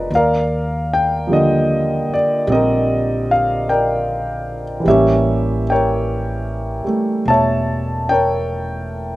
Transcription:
0.00 0.11 F3 soft
0.00 0.11 G#3 soft
0.00 0.11 A#3 soft
0.00 0.11 B3 soft
0.00 0.12 D4 soft
0.00 0.12 F4 soft
0.00 0.12 A#4 medium
0.00 0.12 B4 medium
0.00 0.13 D5 medium
0.00 0.13 D#5 soft
0.10 2.05 D#2 medium
0.15 2.46 A#4 medium
0.15 2.12 D5 medium
0.15 0.89 F5 medium
0.93 1.32 G5 medium
1.27 4.84 F3 soft
1.27 2.45 G3 soft
1.27 4.86 A#3 soft
1.32 4.86 D3 soft
1.32 2.13 D#5 medium
2.09 muted upright bass stroke soft
2.14 2.51 D5 medium
2.47 4.81 A#1 medium
2.47 4.82 G3 soft
2.47 4.86 C4 soft
2.52 4.84 G4 soft
2.52 3.68 A#4 soft
2.52 3.32 D#5 medium
3.31 3.65 F5 medium
3.69 4.83 A#4 soft
3.69 4.83 D5 soft
3.69 4.63 G5 medium
4.80 9.16 E3 soft
4.80 6.83 G3 soft
4.85 6.82 A1 medium
4.85 9.16 A#3 soft
4.85 7.23 G4 soft
4.85 5.63 E5 medium
4.90 9.16 C#4 soft
4.90 5.70 C#5 soft
5.70 8.05 A#4 soft
5.70 7.29 C#5 soft
5.70 6.84 G5 medium
6.84 9.16 G3 soft
6.84 9.16 A3 soft
6.84 muted upright bass stroke soft
7.25 9.16 E1 medium
7.25 8.10 A5 medium
7.30 8.10 C#5 soft
7.30 9.16 E5 soft
8.09 9.16 A#4 soft
8.09 9.16 C#5 soft
8.09 9.16 G5 medium

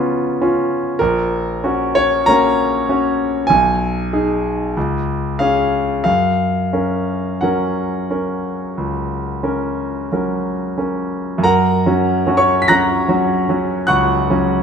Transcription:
0.00 1.02 C#3 soft
0.00 0.37 B3 soft
0.00 0.41 C#4 soft
0.00 0.42 F4 soft
0.00 0.39 C#5 medium
0.41 0.96 C#4 soft
0.41 0.96 F4 soft
0.99 1.62 A#1 medium
0.99 1.96 A#4 medium
1.64 2.24 C#4 soft
1.64 2.24 F#4 soft
1.95 2.27 C#5 medium
2.26 2.85 A#3 soft
2.26 2.85 C#4 soft
2.26 2.85 F#4 soft
2.26 3.48 A#5 loud
2.89 3.46 C#4 soft
2.89 3.46 F#4 soft
3.47 4.10 B1 medium
3.47 5.39 G#5 medium
4.13 4.72 D#4 soft
4.13 4.72 G#4 soft
4.77 5.39 C#2 medium
5.39 6.02 C#4 soft
5.39 6.02 G#4 soft
5.39 6.02 F5 medium
6.04 6.71 F#2 soft
6.04 7.41 F5 medium
6.73 7.38 C#4 soft
6.73 7.38 A#4 soft
7.41 8.06 F#3 soft
7.41 8.06 C#4 soft
7.41 8.07 A#4 soft
7.41 10.11 F#5 medium
8.10 8.74 C#4 soft
8.10 8.74 A#4 soft
8.77 9.42 C#2 soft
9.43 10.07 C#4 soft
9.43 10.07 A#4 soft
10.12 10.75 F#3 soft
10.12 10.76 C#4 soft
10.12 10.76 A#4 soft
10.78 11.40 C#4 soft
10.78 11.40 A#4 soft
11.38 11.82 F#2 medium
11.44 12.34 A#4 medium
11.44 12.34 F#5 medium
11.44 12.38 A#5 medium
11.86 12.24 F#3 soft
11.86 12.24 C#4 soft
11.86 12.24 F#4 soft
12.27 12.64 F#3 soft
12.27 12.65 C#4 soft
12.27 12.65 F#4 soft
12.37 12.60 C#5 medium
12.37 12.62 C#6 medium
12.62 12.69 B6 medium
12.68 13.06 F#3 soft
12.68 13.06 C#4 soft
12.68 13.06 F#4 soft
12.68 13.86 A#5 medium
12.68 13.85 F#6 medium
12.68 13.90 A#6 medium
13.09 13.45 F#3 soft
13.09 13.46 C#4 soft
13.09 13.46 F#4 soft
13.49 13.86 F#3 soft
13.49 13.86 C#4 soft
13.49 13.86 F#4 soft
13.87 14.28 C#2 medium
13.87 14.63 F#5 medium
13.87 14.63 C#6 medium
13.87 14.63 F#6 medium
14.30 14.63 F#3 soft
14.30 14.63 C#4 soft
14.30 14.63 F#4 soft

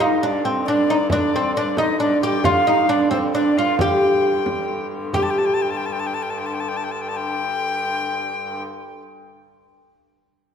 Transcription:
0.00 5.13 G2 medium
0.00 5.13 D3 medium
0.00 0.22 D#4 medium
0.00 0.20 D#5 medium
0.20 0.45 D4 medium
0.20 0.43 D5 medium
0.20 0.24 D#5 medium
0.45 0.67 C4 medium
0.65 0.90 D4 medium
0.65 1.07 D5 medium
0.88 0.96 D#4 medium
0.88 frame drum soft
1.10 1.32 D4 loud
1.10 1.52 D5 medium
1.10 frame drum medium
1.33 1.55 C4 medium
1.33 frame drum soft
1.56 1.77 D4 loud
1.56 1.76 D5 medium
1.77 1.99 D#4 medium
1.77 1.99 D#5 medium
1.77 frame drum medium
2.00 2.23 D4 medium
2.00 2.21 D5 medium
2.22 2.45 G4 loud
2.22 2.46 G5 medium
2.22 frame drum soft
2.44 2.66 F4 loud
2.44 2.92 F5 loud
2.44 frame drum loud
2.67 2.89 D#4 medium
2.67 frame drum soft
2.89 3.10 D4 medium
2.89 3.11 D5 medium
3.11 3.34 C4 medium
3.11 3.18 C5 medium
3.11 frame drum medium
3.35 3.57 D4 medium
3.35 3.59 D5 medium
3.57 3.81 F4 medium
3.57 3.79 F5 medium
3.57 frame drum soft
3.79 4.88 G4 loud
3.79 4.87 G5 medium
3.79 frame drum medium
4.46 frame drum medium
5.13 8.62 G2 medium
5.13 8.62 D3 medium
5.13 9.03 G4 medium
5.13 5.24 G5 medium
5.13 frame drum medium
5.23 5.32 A5 medium
5.30 5.40 G5 medium
5.38 5.47 A5 medium
5.46 5.56 G5 medium
5.54 5.63 A5 medium
5.62 5.72 G5 medium
5.71 5.79 A5 medium
5.77 5.87 G5 medium
5.86 5.94 A5 medium
5.92 6.01 G5 medium
6.00 6.08 A5 medium
6.07 6.16 G5 medium
6.14 6.24 A5 medium
6.23 6.32 G5 medium
6.30 6.40 A5 medium
6.38 6.47 G5 medium
6.46 6.56 A5 medium
6.54 6.62 G5 medium
6.60 6.70 A5 medium
6.69 6.78 G5 medium
6.77 6.86 A5 medium
6.84 6.93 G5 medium
6.91 7.03 A5 medium
7.01 7.10 G5 medium
7.09 7.18 A5 medium
7.16 8.63 G5 loud

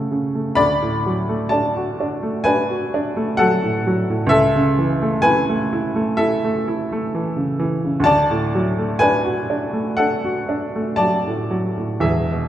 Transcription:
0.00 0.56 F#1 medium
0.00 0.57 F#2 medium
0.00 0.11 C#3 medium
0.00 0.35 A3 medium
0.00 0.63 C#4 medium
0.00 0.62 A4 medium
0.00 0.12 F#5 medium
0.11 0.50 C#3 medium
0.35 0.59 A3 medium
0.55 4.28 D2 medium
0.55 1.48 D5 loud
0.55 1.51 B5 loud
0.82 1.20 A2 medium
1.06 1.44 F#3 medium
1.29 1.68 A3 medium
1.49 1.91 D4 medium
1.49 2.43 D5 medium
1.49 2.47 A5 loud
1.77 2.16 F#4 medium
2.00 2.39 D4 medium
2.23 2.61 A3 medium
2.44 2.85 D4 medium
2.44 3.35 B4 medium
2.44 3.38 G#5 loud
2.70 3.08 F#4 medium
2.94 3.31 D4 medium
3.17 3.54 A3 medium
3.37 3.77 F#3 medium
3.37 4.28 A4 medium
3.37 4.31 F#5 loud
3.64 4.00 A2 medium
3.87 4.24 F#3 medium
4.10 4.33 A2 medium
4.26 7.99 C#2 medium
4.26 5.19 A4 medium
4.26 5.23 E5 loud
4.56 4.92 C#3 medium
4.78 5.15 E3 medium
5.02 5.39 A3 medium
5.22 5.62 E4 medium
5.22 6.15 B4 medium
5.22 6.18 G#5 loud
5.49 5.87 A3 medium
5.73 6.11 E4 medium
5.96 6.34 A3 medium
6.17 6.57 E4 medium
6.17 7.55 A4 medium
6.17 7.58 E5 loud
6.45 6.81 A3 medium
6.68 7.04 E4 medium
6.92 7.28 A3 medium
7.15 7.51 E3 medium
7.37 7.74 C#3 medium
7.60 7.97 E3 medium
7.85 8.07 C#3 medium
8.00 11.97 D2 medium
8.04 8.97 D5 loud
8.04 9.00 A5 loud
8.31 8.68 A2 medium
8.55 8.92 F#3 medium
8.79 9.16 A3 medium
8.99 9.40 D4 medium
8.99 9.94 B4 medium
8.99 9.97 G#5 loud
9.25 9.64 F#4 medium
9.50 9.89 D4 medium
9.73 10.13 A3 medium
9.97 10.39 D4 medium
9.97 10.95 A4 medium
9.97 10.98 F#5 loud
10.25 10.64 F#4 medium
10.49 10.89 D4 medium
10.76 11.15 A3 medium
10.96 11.40 F#3 medium
10.96 11.99 D5 medium
10.96 12.03 A5 loud
11.27 11.68 A2 medium
11.51 11.93 F#3 medium
11.78 12.04 A2 medium
12.00 12.48 E1 medium
12.00 12.48 E2 medium
12.00 12.48 G#4 medium
12.00 12.48 E5 loud
12.32 12.48 B2 medium

